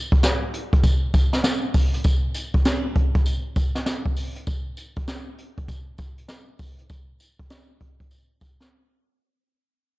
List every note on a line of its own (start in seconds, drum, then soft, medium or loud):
0.12 kick medium
0.12 closed hi-hat medium
0.23 snare loud
0.23 closed hi-hat medium
0.23 tambourine loud
0.54 closed hi-hat medium
0.73 kick loud
0.73 closed hi-hat medium
0.83 kick loud
0.83 closed hi-hat medium
0.83 tambourine medium
1.14 kick medium
1.14 closed hi-hat medium
1.14 tambourine medium
1.33 snare medium
1.33 closed hi-hat medium
1.44 snare loud
1.44 closed hi-hat medium
1.44 tambourine loud
1.74 kick loud
1.74 open hi-hat medium
1.74 tambourine medium
1.94 closed hi-hat medium
2.04 kick loud
2.04 closed hi-hat medium
2.04 tambourine medium
2.34 closed hi-hat medium
2.34 tambourine medium
2.54 kick loud
2.54 closed hi-hat medium
2.65 snare loud
2.65 closed hi-hat medium
2.65 tambourine loud
2.95 kick medium
2.95 closed hi-hat medium
3.15 kick loud
3.15 closed hi-hat medium
3.26 closed hi-hat medium
3.26 tambourine medium
3.56 kick medium
3.56 closed hi-hat medium
3.56 tambourine medium
3.75 snare medium
3.75 closed hi-hat medium
3.86 snare loud
3.86 closed hi-hat medium
3.86 tambourine loud
4.06 kick loud
4.17 open hi-hat medium
4.17 tambourine medium
4.36 closed hi-hat medium
4.47 kick loud
4.47 closed hi-hat medium
4.47 tambourine medium
4.77 closed hi-hat medium
4.77 tambourine medium
4.96 kick loud
4.96 closed hi-hat medium
5.07 snare loud
5.07 closed hi-hat loud
5.07 tambourine loud
5.38 closed hi-hat medium
5.58 kick loud
5.58 closed hi-hat medium
5.68 kick loud
5.68 closed hi-hat medium
5.68 tambourine medium
5.98 kick medium
5.98 closed hi-hat medium
5.98 tambourine medium
6.18 closed hi-hat medium
6.28 snare loud
6.28 closed hi-hat medium
6.28 tambourine loud
6.59 kick loud
6.59 open hi-hat medium
6.59 tambourine medium
6.79 closed hi-hat medium
6.90 kick loud
6.90 closed hi-hat medium
6.90 tambourine medium
7.20 closed hi-hat medium
7.20 tambourine medium
7.39 kick loud
7.39 closed hi-hat medium
7.50 snare loud
7.50 closed hi-hat loud
7.50 tambourine loud
7.80 kick loud
7.80 closed hi-hat medium
8.00 kick loud
8.00 closed hi-hat medium
8.11 closed hi-hat medium
8.11 tambourine medium
8.41 kick medium
8.41 closed hi-hat medium
8.41 tambourine medium
8.60 snare medium
8.60 closed hi-hat medium